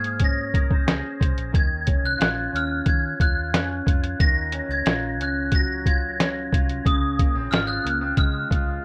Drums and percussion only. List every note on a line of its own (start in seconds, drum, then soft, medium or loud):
0.04 closed hi-hat soft
0.20 kick medium
0.20 closed hi-hat medium
0.54 kick medium
0.54 closed hi-hat medium
0.71 kick medium
0.88 snare loud
0.88 closed hi-hat medium
1.21 kick medium
1.21 closed hi-hat medium
1.38 closed hi-hat soft
1.54 kick loud
1.54 closed hi-hat medium
1.87 kick medium
1.87 closed hi-hat medium
2.21 snare loud
2.21 closed hi-hat medium
2.56 closed hi-hat medium
2.86 kick medium
2.86 closed hi-hat medium
3.20 kick medium
3.20 closed hi-hat medium
3.54 snare loud
3.54 closed hi-hat medium
3.87 kick medium
3.87 closed hi-hat medium
4.04 closed hi-hat medium
4.20 kick loud
4.20 closed hi-hat medium
4.52 closed hi-hat medium
4.86 snare medium
4.86 closed hi-hat medium
5.21 closed hi-hat medium
5.52 kick medium
5.52 closed hi-hat medium
5.86 kick medium
5.86 closed hi-hat medium
6.20 snare loud
6.20 closed hi-hat medium
6.53 kick medium
6.53 closed hi-hat medium
6.69 closed hi-hat soft
6.86 kick loud
6.86 closed hi-hat medium
7.19 kick medium
7.19 closed hi-hat medium
7.53 snare medium
7.53 closed hi-hat medium
7.87 closed hi-hat medium
8.17 kick medium
8.17 closed hi-hat medium
8.51 kick medium
8.51 closed hi-hat medium